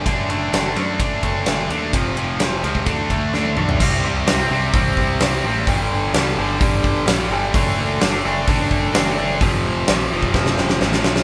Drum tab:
CC |----------------|----------------|x---------------|----------------|
RD |x-x-x-x-x-x-x-x-|x-x-x-x-x-x-----|----------------|----------------|
HH |----------------|----------------|----o---o---o---|o---o---o---o---|
SD |----o-------o---|----o-------o---|----o-------o---|----o-------o---|
T1 |----------------|-------------o--|----------------|----------------|
T2 |----------------|--------------o-|----------------|----------------|
FT |----------------|---------------o|----------------|----------------|
BD |o-------o-o-----|o------oo-o-----|o-------o-o-----|o-------o-o-----|

CC |----------------|----------------|
RD |----------------|----------------|
HH |o---o---o---o---|o---o-----------|
SD |----o-------o---|----o---oooooooo|
T1 |----------------|----------------|
T2 |----------------|----------------|
FT |----------------|----------------|
BD |o-------o-o-----|o------oo-------|